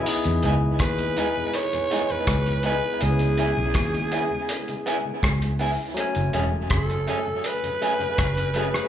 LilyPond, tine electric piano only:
\new Staff \with { instrumentName = "Tine electric piano" } { \time 4/4 \key e \major \tempo 4 = 81 << { <b' gis''>16 r2. r8. | r1 | r1 | } \\ { <b dis' e' gis'>1 | <b cis' e' gis'>1 | <fis a cis' gis''>2.~ <fis a cis' gis''>8 <fis a cis' gis'>8 | } >> }